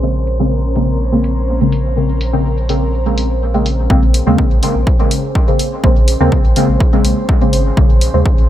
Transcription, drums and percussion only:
0.27 open hi-hat
0.76 open hi-hat
1.24 open hi-hat
1.72 open hi-hat
2.21 open hi-hat
2.69 open hi-hat
3.18 open hi-hat
3.66 open hi-hat
3.90 kick
4.14 open hi-hat
4.38 kick
4.63 open hi-hat
4.87 kick
5.11 open hi-hat
5.35 kick
5.59 open hi-hat
5.84 kick
6.08 open hi-hat
6.32 kick
6.56 open hi-hat
6.80 kick
7.05 open hi-hat
7.29 kick
7.53 open hi-hat
7.77 kick
8.01 open hi-hat
8.26 kick

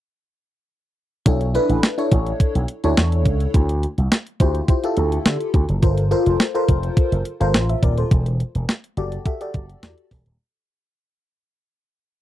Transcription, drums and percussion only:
1.26 kick, closed hi-hat
1.41 closed hi-hat
1.55 closed hi-hat
1.70 closed hi-hat
1.83 snare, closed hi-hat
1.98 closed hi-hat
2.11 kick, closed hi-hat
2.27 closed hi-hat
2.40 kick, closed hi-hat
2.55 closed hi-hat
2.68 closed hi-hat
2.84 closed hi-hat
2.97 snare, closed hi-hat
3.12 closed hi-hat
3.26 kick, closed hi-hat
3.40 closed hi-hat
3.54 kick, closed hi-hat
3.69 closed hi-hat
3.83 closed hi-hat
3.98 closed hi-hat
4.12 snare, closed hi-hat
4.27 closed hi-hat
4.40 kick, closed hi-hat
4.55 closed hi-hat
4.68 kick, closed hi-hat
4.84 closed hi-hat
4.97 closed hi-hat
5.12 closed hi-hat
5.26 snare, closed hi-hat
5.40 closed hi-hat
5.54 kick, closed hi-hat
5.69 closed hi-hat
5.83 kick, closed hi-hat
5.98 closed hi-hat
6.11 closed hi-hat
6.26 closed hi-hat
6.40 snare, closed hi-hat
6.55 closed hi-hat
6.68 kick, closed hi-hat
6.83 closed hi-hat
6.97 kick, closed hi-hat
7.12 closed hi-hat
7.25 closed hi-hat
7.41 closed hi-hat
7.54 snare, closed hi-hat
7.69 closed hi-hat
7.83 kick, closed hi-hat
7.98 closed hi-hat
8.11 kick, closed hi-hat
8.26 closed hi-hat
8.40 closed hi-hat
8.55 closed hi-hat
8.69 snare, closed hi-hat
8.84 closed hi-hat
8.97 closed hi-hat
9.12 closed hi-hat
9.26 kick, closed hi-hat
9.41 closed hi-hat
9.54 kick, closed hi-hat
9.70 closed hi-hat
9.83 snare, closed hi-hat
9.98 closed hi-hat
10.11 kick, open hi-hat
10.26 closed hi-hat

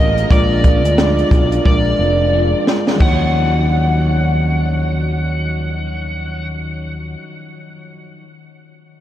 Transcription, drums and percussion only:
0.18 closed hi-hat
0.30 kick, closed hi-hat
0.64 kick, closed hi-hat
0.85 closed hi-hat
0.98 snare, closed hi-hat
1.19 closed hi-hat
1.31 kick, closed hi-hat
1.52 closed hi-hat
1.65 kick
2.67 snare
2.87 snare
3.00 kick, crash

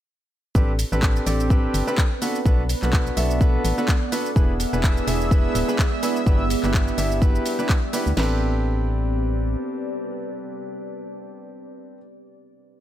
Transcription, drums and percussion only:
0.55 kick, shaker
0.79 open hi-hat, shaker
0.92 shaker
1.03 kick, clap, shaker
1.16 shaker
1.26 open hi-hat, shaker
1.40 shaker
1.50 kick, shaker
1.74 open hi-hat, shaker
1.88 shaker
1.98 kick, clap, shaker
2.22 open hi-hat, shaker
2.35 shaker
2.46 kick, shaker
2.69 open hi-hat, shaker
2.83 clap, shaker
2.93 kick, clap, shaker
3.07 shaker
3.17 open hi-hat, shaker
3.31 shaker
3.41 kick, shaker
3.65 open hi-hat, shaker
3.78 shaker
3.88 kick, clap, shaker
4.12 open hi-hat, shaker
4.26 shaker
4.36 kick, shaker
4.60 open hi-hat, shaker
4.73 shaker
4.84 kick, clap, shaker
4.97 shaker
5.08 open hi-hat, shaker
5.21 shaker
5.31 kick, shaker
5.55 open hi-hat, shaker
5.69 shaker
5.79 kick, clap, shaker
6.03 open hi-hat, shaker
6.16 shaker
6.26 kick, shaker
6.50 open hi-hat, shaker
6.64 clap, shaker
6.74 kick, clap, shaker
6.88 shaker
6.98 open hi-hat, shaker
7.12 shaker
7.22 kick, shaker
7.35 shaker
7.46 open hi-hat, shaker
7.59 shaker
7.69 kick, clap, shaker
7.93 open hi-hat, shaker
8.07 shaker
8.17 snare, crash

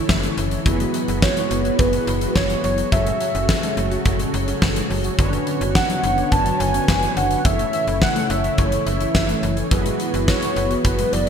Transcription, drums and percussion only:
0.09 kick, snare
0.23 closed hi-hat
0.38 closed hi-hat
0.51 closed hi-hat
0.66 kick, closed hi-hat
0.80 closed hi-hat
0.94 closed hi-hat
1.08 closed hi-hat
1.22 kick, snare
1.37 closed hi-hat
1.51 closed hi-hat
1.65 closed hi-hat
1.79 kick, closed hi-hat
1.93 closed hi-hat
2.07 closed hi-hat
2.21 closed hi-hat
2.36 kick, snare
2.50 closed hi-hat
2.64 closed hi-hat
2.78 closed hi-hat
2.92 kick, closed hi-hat
3.07 closed hi-hat
3.21 closed hi-hat
3.35 closed hi-hat
3.49 kick, snare
3.63 closed hi-hat
3.77 closed hi-hat
3.91 closed hi-hat
4.05 kick, closed hi-hat
4.19 closed hi-hat
4.34 closed hi-hat
4.48 closed hi-hat
4.62 kick, snare
4.76 closed hi-hat
4.90 open hi-hat
5.04 closed hi-hat
5.19 kick, closed hi-hat
5.33 closed hi-hat
5.47 closed hi-hat
5.61 closed hi-hat
5.75 kick, snare
5.90 closed hi-hat
6.04 closed hi-hat
6.18 closed hi-hat
6.32 kick, closed hi-hat
6.46 closed hi-hat
6.60 closed hi-hat
6.74 closed hi-hat
6.88 kick, snare
7.03 closed hi-hat
7.17 closed hi-hat
7.31 closed hi-hat
7.45 kick, closed hi-hat
7.59 closed hi-hat
7.73 closed hi-hat
7.87 closed hi-hat
8.02 kick, snare
8.16 closed hi-hat
8.30 closed hi-hat
8.44 closed hi-hat
8.58 kick, closed hi-hat
8.72 closed hi-hat
8.87 closed hi-hat
9.01 closed hi-hat
9.15 kick, snare
9.29 closed hi-hat
9.43 closed hi-hat
9.57 closed hi-hat
9.71 kick, closed hi-hat
9.86 closed hi-hat
10.00 closed hi-hat
10.14 closed hi-hat
10.28 kick, snare
10.42 closed hi-hat
10.56 closed hi-hat
10.71 closed hi-hat
10.85 kick, closed hi-hat
10.99 closed hi-hat
11.13 closed hi-hat

